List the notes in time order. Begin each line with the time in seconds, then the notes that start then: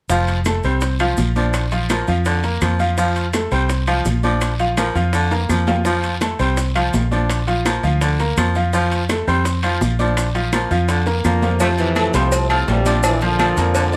0.09 F1 F3 F4 F5, high bongo, high conga, long guiro, maracas
0.28 high conga, high timbale, maracas
0.45 A3 A4 A5, high bongo, high conga, high timbale, short guiro, claves, maracas
0.63 C2 G3 C4 C5 C6, high bongo, high conga, short guiro, maracas
0.81 high bongo, high conga, high timbale, long guiro, maracas
0.99 F3 F4 F5, high bongo, high conga, high timbale, claves, maracas
1.17 A#1, high bongo, low bongo, high conga, short guiro, maracas
1.36 F3 D4 D5 D6, high bongo, high conga, short guiro, maracas
1.54 high bongo, high conga, high timbale, long guiro, claves, maracas
1.71 F3 F4 F5, high conga, high timbale, maracas
1.90 F3 A#3 A#4 A#5, high bongo, high conga, high timbale, short guiro, claves, maracas
2.08 F2 F3 F4 F5, high bongo, high conga, short guiro, maracas
2.25 D3, high bongo, high conga, high timbale, long guiro, maracas
2.43 A#3 A#4 A#5, high bongo, high conga, high timbale, maracas
2.61 F2 F3, high bongo, low bongo, high conga, high timbale, short guiro, claves, maracas
2.79 F3 F4 F5, high bongo, short guiro, maracas
2.97 F3 F4 F5, high bongo, high conga, long guiro, maracas
3.16 high conga, high timbale, maracas
3.33 A3 A4 A5, high bongo, high conga, high timbale, short guiro, claves, maracas
3.51 C2 G3 C4 C5 C6, high bongo, high conga, short guiro, maracas
3.69 high bongo, high conga, high timbale, long guiro, maracas
3.87 F3 F4 F5, high bongo, high conga, high timbale, claves, maracas
4.05 A#1, high bongo, low bongo, high conga, short guiro, maracas
4.23 F3 D4 D5 D6, high bongo, high conga, short guiro, maracas
4.41 high bongo, high conga, high timbale, long guiro, claves, maracas
4.59 F3 F4 F5, high conga, high timbale, maracas
4.77 F3 A#3 A#4 A#5, high bongo, high conga, high timbale, short guiro, claves, maracas
4.95 F2 F3 F4 F5, high bongo, high conga, short guiro, maracas
5.13 D3, high bongo, high conga, high timbale, long guiro, maracas
5.31 A#3 A#4 A#5, high bongo, high conga, high timbale, maracas
5.49 F2 F3, high bongo, low bongo, high conga, short guiro, claves, maracas
5.67 F3 F4 F5, high bongo, high conga, low timbale, short guiro, maracas
5.85 F3 F4 F5, high bongo, high conga, long guiro, maracas
6.04 high conga, high timbale, maracas
6.21 A3 A4 A5, high bongo, high conga, high timbale, short guiro, claves, maracas
6.39 C2 G3 C4 C5 C6, high bongo, high conga, short guiro, maracas
6.57 high bongo, high conga, high timbale, long guiro, maracas
6.75 F3 F4 F5, high bongo, high conga, high timbale, claves, maracas
6.93 A#1, high bongo, low bongo, high conga, low timbale, short guiro, maracas
7.11 F3 D4 D5 D6, high bongo, high conga, short guiro, maracas
7.29 high bongo, high conga, high timbale, long guiro, claves, maracas
7.47 F3 F4 F5, high conga, high timbale, maracas
7.65 F3 A#3 A#4 A#5, high bongo, high conga, high timbale, short guiro, claves, maracas
7.83 D2 F3 F4 F5, high bongo, high conga, short guiro, maracas
8.01 D3, high bongo, high conga, high timbale, long guiro, maracas
8.19 A#3 A#4 A#5, high bongo, high conga, high timbale, maracas
8.37 F2 F3, high bongo, low bongo, high conga, high timbale, short guiro, claves, maracas
8.55 F3 F4 F5, high bongo, short guiro, maracas
8.73 F3 F4 F5, high bongo, high conga, long guiro, maracas
8.92 high conga, high timbale, maracas
9.09 A3 A4 A5, high bongo, high conga, high timbale, short guiro, claves, maracas
9.28 F2 G3 C4 C5 C6, high bongo, high conga, short guiro, maracas
9.45 high bongo, high conga, high timbale, long guiro, maracas
9.63 F3 F4 F5, high bongo, high conga, high timbale, claves, maracas
9.81 A#1, high bongo, low bongo, high conga, short guiro, maracas
9.99 F3 D4 D5 D6, high bongo, high conga, short guiro, maracas
10.17 high bongo, high conga, high timbale, long guiro, claves, maracas
10.35 F3 F4 F5, high conga, high timbale, maracas
10.53 F3 A#3 A#4 A#5, high bongo, high conga, high timbale, short guiro, claves, maracas
10.71 F2 F3 F4 F5, high bongo, high conga, short guiro, maracas
10.89 D3, high bongo, high conga, high timbale, long guiro, maracas
11.06 A#3 A#4 A#5, high bongo, high conga, high timbale, maracas
11.24 F2 D3 F3 A#3, high bongo, low bongo, high conga, short guiro, claves, maracas
11.42 F3 F4 F5, high bongo, high conga, low timbale, short guiro, maracas
11.60 C3 F3 A3 F4 F5, cowbell, high conga, long guiro, maracas
11.78 A2 C3 E3, high conga, low agogo, maracas
11.96 A3 A4 A5, cowbell, high conga, low timbale, low agogo, short guiro, claves, maracas
12.14 C2 A2 C3 F3 G3 C4 C5 C6, cowbell, high conga, short guiro, maracas
12.32 cowbell, high conga, low agogo, long guiro, maracas
12.50 F3 F4 F5 F6, high conga, low agogo, claves, maracas
12.68 A#1 C3 G3, cowbell, high conga, low timbale, short guiro, maracas
12.86 F3 D4 D5 D6, cowbell, high conga, low agogo, short guiro, maracas
13.03 A#2 E3, cowbell, high conga, low agogo, long guiro, claves, maracas
13.21 A#2 D3 F3 F4 F5, cowbell, high conga, maracas
13.39 F3, cowbell, high conga, low timbale, low agogo, short guiro, claves, maracas
13.57 F2 A#3 A#4 A#5, cowbell, low agogo, short guiro, maracas
13.75 D3, cowbell, high conga, long guiro, maracas
13.93 D4, high conga, maracas